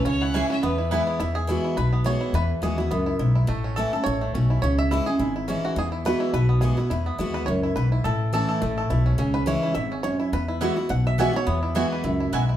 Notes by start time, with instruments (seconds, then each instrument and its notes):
Already playing: five-string banjo E4
0.05 upright bass C#2, steel-string acoustic guitar C#3, five-string banjo C#4, fiddle C#5
0.22 five-string banjo E4, fiddle F#5
0.34 steel-string acoustic guitar E3 G#3 C#4 E4, mandolin C#4 G#4 E5 G#5, five-string banjo E4
0.50 five-string banjo C#4, steel-string acoustic guitar C#4 E4, fiddle E5
0.63 steel-string acoustic guitar E2, upright bass E2, five-string banjo B3, fiddle B4
0.78 five-string banjo E4
0.91 steel-string acoustic guitar E3 G#3 B3 E4, mandolin B3 E4 B4 G#5, five-string banjo E4
1.07 five-string banjo B3
1.20 upright bass E2, steel-string acoustic guitar E2, five-string banjo E4
1.35 five-string banjo G#4
1.47 steel-string acoustic guitar E3 G#3 B3 F#4, five-string banjo E4
1.64 five-string banjo E4
1.77 upright bass B1, steel-string acoustic guitar B2, five-string banjo B4
1.92 five-string banjo B3
2.04 steel-string acoustic guitar E3 G#3 B3 F#4, five-string banjo C#5
2.21 five-string banjo E4
2.33 upright bass E2, steel-string acoustic guitar E2, five-string banjo B4
2.62 upright bass D#2, steel-string acoustic guitar E3 G#3 B3 F#4, five-string banjo G#4
2.78 steel-string acoustic guitar B3 F#4, five-string banjo E4
2.91 upright bass C#2, steel-string acoustic guitar F#2, five-string banjo B3
3.06 five-string banjo E4
3.19 upright bass B1, steel-string acoustic guitar G#2, five-string banjo E4
3.35 five-string banjo E4
3.47 upright bass A1, steel-string acoustic guitar A2, five-string banjo A3
3.64 five-string banjo C#4
3.76 steel-string acoustic guitar E3 A3 C#4 E4, five-string banjo A4
3.93 steel-string acoustic guitar C#4 E4, five-string banjo A4
4.04 upright bass A1, steel-string acoustic guitar A2, five-string banjo C#5
4.21 five-string banjo A3
4.34 upright bass B1, steel-string acoustic guitar B2, five-string banjo C#4
4.50 five-string banjo E4
4.62 upright bass C#2, steel-string acoustic guitar C#3, five-string banjo C#5
4.79 five-string banjo E5
4.91 steel-string acoustic guitar E3 G#3 C#4 E4, five-string banjo E4
5.06 steel-string acoustic guitar C#4 E4, five-string banjo G#4
5.19 upright bass G#1, steel-string acoustic guitar G#2, five-string banjo E4
5.36 five-string banjo E4
5.48 steel-string acoustic guitar E3 G#3 C#4 E4, five-string banjo C#4
5.65 five-string banjo F#4
5.76 upright bass E2, steel-string acoustic guitar E2, five-string banjo G#4
5.92 five-string banjo E4
6.05 steel-string acoustic guitar E3 G#3 B3 F#4, five-string banjo B4
6.20 five-string banjo E4
6.33 upright bass B1, steel-string acoustic guitar B2, five-string banjo B4
6.49 five-string banjo B3
6.61 steel-string acoustic guitar E3 G#3 B3 F#4, five-string banjo G#4
6.77 steel-string acoustic guitar B3 F#4, five-string banjo E4
6.90 upright bass E2, steel-string acoustic guitar E2, five-string banjo E4
7.06 five-string banjo B3
7.18 upright bass D#2, steel-string acoustic guitar E3 G#3 B3 F#4, five-string banjo E4
7.34 five-string banjo B4
7.46 upright bass C#2, steel-string acoustic guitar F#2, five-string banjo C#5
7.63 five-string banjo E4
7.76 upright bass B1, steel-string acoustic guitar G#2, five-string banjo B4
7.92 five-string banjo E4
8.04 upright bass A1, steel-string acoustic guitar A2, five-string banjo A4
8.33 steel-string acoustic guitar E3 A3 C#4 E4, five-string banjo A4
8.49 five-string banjo A4
8.62 upright bass A1, steel-string acoustic guitar A2, five-string banjo A3
8.78 five-string banjo A4
8.90 upright bass B1, steel-string acoustic guitar B2, five-string banjo E4
9.06 five-string banjo C#4
9.18 upright bass C#2, steel-string acoustic guitar C#3, five-string banjo C#4
9.34 five-string banjo B4
9.46 steel-string acoustic guitar E3 G#3 C#4 E4, five-string banjo C#5
9.63 five-string banjo E4
9.75 upright bass G#1, steel-string acoustic guitar G#2, five-string banjo E5
9.92 five-string banjo C#4
10.03 steel-string acoustic guitar F#2, five-string banjo C#5
10.20 five-string banjo E4
10.32 upright bass E2, steel-string acoustic guitar E2, five-string banjo B4
10.48 five-string banjo E4
10.61 steel-string acoustic guitar E3 G#3 B3 F#4, mandolin B3 F#4 E5 G#5, five-string banjo E4
10.76 steel-string acoustic guitar B3 F#4, five-string banjo E4
10.89 upright bass B1, steel-string acoustic guitar B2, five-string banjo F#5
11.07 five-string banjo E5
11.18 steel-string acoustic guitar E3 G#3 B3 F#4, mandolin B3 F#4 E5 G#5, five-string banjo E5
11.33 steel-string acoustic guitar B3 F#4, five-string banjo C#5
11.47 steel-string acoustic guitar E2, upright bass E2, five-string banjo B3
11.63 five-string banjo E4
11.75 steel-string acoustic guitar E3 G#3 B3 F#4, mandolin B3 F#4 E5 G#5, five-string banjo E4
11.92 five-string banjo B4
12.04 upright bass C#2, steel-string acoustic guitar F#2, five-string banjo E4
12.20 five-string banjo E4
12.32 upright bass B1, steel-string acoustic guitar G#2, mandolin B3 F#4 E5 G#5, five-string banjo E4
12.49 five-string banjo E4